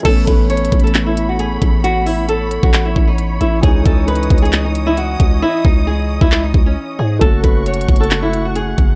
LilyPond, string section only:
\new Staff \with { instrumentName = "String section" } { \time 4/4 \key a \lydian \tempo 4 = 134 <a cis'' b''>1~ | <a cis'' b''>1 | <dis'' dis'''>1~ | <dis'' dis'''>1 |
<a fis'' cis'''>1 | }